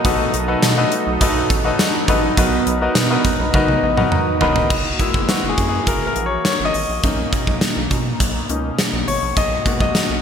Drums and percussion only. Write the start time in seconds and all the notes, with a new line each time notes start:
0.05 kick, closed hi-hat
0.34 closed hi-hat
0.62 snare, closed hi-hat, tambourine
0.92 closed hi-hat
1.21 kick, closed hi-hat
1.50 kick, closed hi-hat
1.79 snare, closed hi-hat, tambourine
2.08 kick, closed hi-hat
2.37 kick, closed hi-hat
2.67 closed hi-hat
2.95 snare, closed hi-hat, tambourine
3.25 kick, closed hi-hat
3.54 kick, high tom
3.68 high tom
3.97 mid tom
4.12 mid tom
4.41 floor tom
4.56 floor tom
4.70 kick, crash
5.00 kick, closed hi-hat
5.14 kick
5.29 snare, closed hi-hat
5.58 kick, closed hi-hat
5.87 kick, closed hi-hat
6.16 closed hi-hat
6.45 snare, closed hi-hat
6.74 open hi-hat
7.03 kick, closed hi-hat
7.33 kick, closed hi-hat
7.47 kick
7.61 snare, closed hi-hat
7.91 kick, closed hi-hat
8.20 kick, closed hi-hat
8.49 closed hi-hat
8.79 snare, closed hi-hat
9.08 open hi-hat
9.37 kick, closed hi-hat
9.66 kick, closed hi-hat
9.80 kick
9.95 snare, closed hi-hat